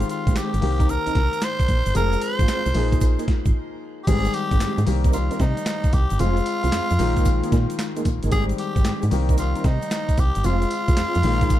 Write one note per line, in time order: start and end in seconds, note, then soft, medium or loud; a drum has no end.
0.00 0.60 D#3 medium
0.00 0.62 G#3 medium
0.00 0.61 C4 medium
0.00 0.62 G4 medium
0.00 closed hi-hat medium
0.00 shaker medium
0.09 0.39 F4 medium
0.09 closed hi-hat medium
0.09 shaker medium
0.26 0.34 A#1 medium
0.26 0.33 G#3 medium
0.26 0.34 C4 medium
0.26 0.34 G4 medium
0.26 kick loud
0.26 closed hi-hat medium
0.26 shaker medium
0.34 0.55 G#3 medium
0.34 0.55 C4 medium
0.34 0.55 G4 medium
0.34 0.92 G4 loud
0.34 snare loud
0.34 clap medium
0.34 closed hi-hat medium
0.34 shaker medium
0.54 0.61 G#1 medium
0.54 closed hi-hat medium
0.54 shaker soft
0.61 0.98 C2 loud
0.61 1.92 D#3 medium
0.61 1.92 A#3 medium
0.61 1.92 C4 medium
0.61 1.93 G4 medium
0.61 open hi-hat medium
0.79 0.92 C4 medium
0.79 0.92 D#4 medium
0.79 0.92 A#4 medium
0.79 kick loud
0.79 closed hi-hat medium
0.79 shaker soft
0.89 1.45 A#4 loud
0.89 closed hi-hat medium
0.89 shaker medium
1.06 1.10 C2 soft
1.06 1.19 C4 medium
1.06 1.19 D#4 medium
1.06 1.19 A#4 medium
1.06 closed hi-hat medium
1.06 shaker soft
1.15 1.30 C2 medium
1.15 kick medium
1.15 snare medium
1.15 closed hi-hat medium
1.33 closed hi-hat medium
1.33 shaker medium
1.42 1.96 C5 loud
1.42 snare loud
1.42 clap medium
1.42 closed hi-hat medium
1.42 shaker medium
1.60 kick medium
1.60 closed hi-hat soft
1.60 shaker soft
1.68 1.83 A#1 medium
1.68 kick medium
1.68 closed hi-hat medium
1.68 shaker soft
1.86 1.93 G1 medium
1.86 closed hi-hat medium
1.86 shaker medium
1.94 2.17 F1 loud
1.94 2.72 F3 medium
1.94 2.74 G#3 medium
1.94 2.14 C4 medium
1.94 2.74 C4 medium
1.94 2.14 F4 medium
1.94 2.15 G#4 medium
1.94 2.75 G#4 medium
1.94 2.24 A#4 loud
1.94 closed hi-hat medium
1.94 tambourine medium
1.94 shaker medium
2.13 closed hi-hat medium
2.13 shaker medium
2.21 3.28 C5 loud
2.21 closed hi-hat medium
2.21 tambourine medium
2.21 shaker medium
2.39 2.46 G#1 loud
2.39 2.47 C4 medium
2.39 2.47 F4 medium
2.39 2.47 G#4 medium
2.39 kick loud
2.39 closed hi-hat medium
2.39 shaker medium
2.48 2.68 C4 medium
2.48 2.68 F4 medium
2.48 2.68 G#4 medium
2.48 snare loud
2.48 clap medium
2.48 closed hi-hat medium
2.48 tambourine medium
2.48 shaker medium
2.66 2.73 C2 medium
2.66 closed hi-hat medium
2.66 shaker soft
2.74 3.17 A#1 loud
2.74 4.04 F3 medium
2.74 4.05 A#3 medium
2.74 4.05 D#4 medium
2.74 4.05 G#4 medium
2.74 open hi-hat medium
2.74 tambourine medium
2.92 3.05 A#3 medium
2.92 3.05 D#4 medium
2.92 3.05 G#4 medium
2.92 kick medium
2.92 closed hi-hat medium
2.92 shaker medium
3.01 kick medium
3.01 closed hi-hat medium
3.01 tambourine medium
3.01 shaker medium
3.18 3.31 A#3 medium
3.18 3.31 D#4 medium
3.18 3.32 G#4 medium
3.18 closed hi-hat medium
3.18 shaker soft
3.28 kick medium
3.28 snare medium
3.28 closed hi-hat medium
3.46 3.53 G#1 medium
3.46 kick loud
3.46 closed hi-hat medium
3.46 shaker medium
4.04 4.84 D#3 medium
4.04 4.27 G#3 medium
4.04 4.09 G4 medium
4.04 4.35 G#4 loud
4.04 kick loud
4.04 closed hi-hat medium
4.04 crash medium
4.04 tambourine medium
4.08 4.29 G#1 loud
4.08 4.85 G3 medium
4.08 4.87 G#3 medium
4.08 4.16 B3 medium
4.08 4.27 C4 medium
4.08 4.27 G4 medium
4.08 4.87 G4 medium
4.08 shaker medium
4.15 4.86 C4 medium
4.25 closed hi-hat soft
4.25 shaker medium
4.34 4.87 G4 loud
4.34 closed hi-hat medium
4.34 tambourine medium
4.51 4.59 G#1 loud
4.51 4.59 G#3 medium
4.51 4.60 C4 medium
4.51 4.60 G4 medium
4.51 kick loud
4.51 closed hi-hat medium
4.51 shaker medium
4.60 4.80 G#3 medium
4.60 4.80 C4 medium
4.60 4.80 G4 medium
4.60 snare loud
4.60 clap medium
4.60 closed hi-hat medium
4.60 tambourine loud
4.60 shaker medium
4.78 4.85 G#2 loud
4.78 closed hi-hat medium
4.78 shaker medium
4.86 5.30 C2 loud
4.86 6.16 D#3 medium
4.86 6.17 G3 medium
4.86 6.17 A#3 medium
4.86 6.17 C4 medium
4.86 6.17 G4 medium
4.86 open hi-hat medium
4.86 tambourine medium
4.86 shaker soft
5.04 5.17 C4 medium
5.04 5.17 D#4 medium
5.04 5.17 A#4 medium
5.04 kick loud
5.04 closed hi-hat medium
5.04 shaker soft
5.13 5.42 F4 medium
5.13 closed hi-hat medium
5.13 tambourine medium
5.13 shaker medium
5.31 5.44 C4 medium
5.31 5.44 D#4 medium
5.31 5.44 A#4 medium
5.31 closed hi-hat medium
5.31 shaker soft
5.39 5.54 C3 loud
5.39 5.95 D#4 loud
5.39 kick medium
5.39 snare medium
5.39 closed hi-hat medium
5.39 shaker medium
5.57 closed hi-hat medium
5.57 shaker soft
5.66 snare loud
5.66 clap medium
5.66 closed hi-hat medium
5.66 tambourine medium
5.66 shaker medium
5.84 kick loud
5.84 closed hi-hat soft
5.84 shaker soft
5.93 6.07 C2 loud
5.93 6.22 G4 loud
5.93 kick medium
5.93 closed hi-hat medium
5.93 tambourine medium
5.93 shaker soft
6.10 6.18 G1 medium
6.10 closed hi-hat medium
6.10 shaker medium
6.19 6.41 F1 loud
6.19 6.98 G#3 medium
6.19 6.39 C4 medium
6.19 6.99 C4 medium
6.19 6.39 F4 medium
6.19 8.06 F4 loud
6.19 6.99 F4 medium
6.19 6.39 G#4 loud
6.19 closed hi-hat medium
6.19 tambourine medium
6.19 shaker medium
6.37 closed hi-hat medium
6.37 shaker medium
6.46 closed hi-hat medium
6.46 tambourine medium
6.64 6.71 C2 loud
6.64 6.71 C4 medium
6.64 6.72 F4 medium
6.64 6.72 G#4 medium
6.64 closed hi-hat medium
6.64 shaker medium
6.72 6.80 F2 soft
6.72 6.92 C4 medium
6.72 6.92 F4 medium
6.72 6.92 G#4 medium
6.72 snare loud
6.72 clap medium
6.72 closed hi-hat medium
6.72 tambourine loud
6.72 shaker medium
6.90 6.98 F2 medium
6.90 closed hi-hat medium
6.90 shaker medium
6.99 7.42 A#1 loud
6.99 8.29 D#3 medium
6.99 8.29 F3 medium
6.99 8.30 G#3 medium
6.99 8.30 A#3 medium
6.99 8.30 F4 medium
6.99 open hi-hat medium
6.99 tambourine medium
6.99 shaker soft
7.17 7.29 A#3 medium
7.17 7.30 D#4 medium
7.17 7.30 G#4 medium
7.17 kick loud
7.17 closed hi-hat medium
7.17 shaker medium
7.25 kick medium
7.25 closed hi-hat medium
7.25 tambourine medium
7.25 shaker medium
7.43 7.56 A#3 medium
7.43 7.56 D#4 medium
7.43 7.56 G#4 medium
7.43 closed hi-hat medium
7.43 shaker soft
7.52 7.67 A#2 loud
7.52 kick medium
7.52 snare medium
7.52 closed hi-hat medium
7.52 shaker medium
7.70 closed hi-hat medium
7.70 shaker medium
7.79 snare loud
7.79 clap medium
7.79 closed hi-hat medium
7.79 tambourine medium
7.79 shaker medium
7.96 8.09 A#3 medium
7.96 8.09 D#4 medium
7.96 8.09 G#4 medium
7.96 closed hi-hat medium
7.96 shaker soft
8.05 8.20 A#1 medium
8.05 kick medium
8.05 closed hi-hat medium
8.05 tambourine medium
8.05 shaker soft
8.23 8.31 G1 medium
8.23 8.36 A#3 medium
8.23 8.36 D#4 medium
8.23 8.36 G#4 medium
8.23 closed hi-hat medium
8.23 shaker medium
8.31 8.53 G#1 loud
8.31 9.09 D#3 medium
8.31 9.10 G3 medium
8.31 9.11 G#3 medium
8.31 8.52 G#3 medium
8.31 8.41 A#3 medium
8.31 8.52 C4 medium
8.31 8.52 G4 medium
8.31 9.12 G4 medium
8.31 8.44 G#4 loud
8.31 kick loud
8.31 closed hi-hat medium
8.31 tambourine medium
8.31 shaker medium
8.39 9.11 C4 medium
8.49 closed hi-hat medium
8.49 shaker medium
8.58 9.08 G4 loud
8.58 closed hi-hat medium
8.58 tambourine medium
8.76 8.83 G#1 medium
8.76 8.83 G#3 medium
8.76 8.84 C4 medium
8.76 8.84 G4 medium
8.76 kick loud
8.76 closed hi-hat medium
8.76 shaker medium
8.84 9.04 G#3 medium
8.84 9.05 C4 medium
8.84 9.05 G4 medium
8.84 snare loud
8.84 clap medium
8.84 closed hi-hat medium
8.84 tambourine loud
8.84 shaker medium
9.02 9.10 G#2 medium
9.02 closed hi-hat medium
9.02 shaker soft
9.11 9.54 C2 loud
9.11 10.41 D#3 medium
9.11 10.42 G3 medium
9.11 10.42 A#3 medium
9.11 10.42 C4 medium
9.11 10.43 G4 medium
9.11 open hi-hat medium
9.11 tambourine medium
9.11 shaker soft
9.29 9.42 C4 medium
9.29 9.42 D#4 medium
9.29 9.42 A#4 medium
9.29 kick medium
9.29 closed hi-hat medium
9.29 shaker soft
9.38 9.67 F4 medium
9.38 closed hi-hat medium
9.38 tambourine medium
9.38 shaker medium
9.55 9.68 C4 medium
9.55 9.68 D#4 medium
9.55 9.68 A#4 medium
9.55 closed hi-hat medium
9.55 shaker soft
9.64 9.79 C3 loud
9.64 10.21 D#4 loud
9.64 kick loud
9.64 snare medium
9.64 closed hi-hat medium
9.64 shaker medium
9.82 closed hi-hat medium
9.82 shaker medium
9.91 snare loud
9.91 clap medium
9.91 closed hi-hat medium
9.91 tambourine medium
9.91 shaker medium
10.09 kick medium
10.09 closed hi-hat soft
10.09 shaker soft
10.17 10.32 C2 loud
10.17 10.47 G4 loud
10.17 kick medium
10.17 closed hi-hat medium
10.17 tambourine medium
10.17 shaker soft
10.35 10.43 G1 medium
10.35 closed hi-hat medium
10.35 shaker medium
10.44 10.66 F1 loud
10.44 11.23 G#3 medium
10.44 10.64 C4 medium
10.44 11.24 C4 medium
10.44 10.64 F4 medium
10.44 11.24 F4 medium
10.44 11.60 F4 loud
10.44 10.64 G#4 loud
10.44 closed hi-hat medium
10.44 tambourine medium
10.44 shaker medium
10.62 closed hi-hat medium
10.62 shaker medium
10.71 closed hi-hat medium
10.71 tambourine medium
10.88 10.96 C2 medium
10.88 10.96 C4 medium
10.88 10.96 F4 medium
10.88 10.96 G#4 medium
10.88 kick loud
10.88 closed hi-hat medium
10.88 shaker medium
10.97 11.05 F2 soft
10.97 11.17 C4 medium
10.97 11.17 F4 medium
10.97 11.17 G#4 medium
10.97 snare loud
10.97 clap medium
10.97 closed hi-hat medium
10.97 tambourine medium
10.97 shaker medium
11.14 11.23 F2 loud
11.14 closed hi-hat medium
11.14 shaker soft
11.23 11.60 A#1 loud
11.23 11.60 D#3 medium
11.23 11.60 F3 medium
11.23 11.60 G#3 medium
11.23 11.60 A#3 medium
11.23 11.60 F4 medium
11.23 open hi-hat medium
11.23 tambourine medium
11.23 shaker medium
11.41 11.54 A#3 medium
11.41 11.54 D#4 medium
11.41 11.55 G#4 medium
11.41 kick medium
11.41 closed hi-hat medium
11.41 shaker soft
11.50 kick medium
11.50 closed hi-hat medium
11.50 tambourine medium
11.50 shaker medium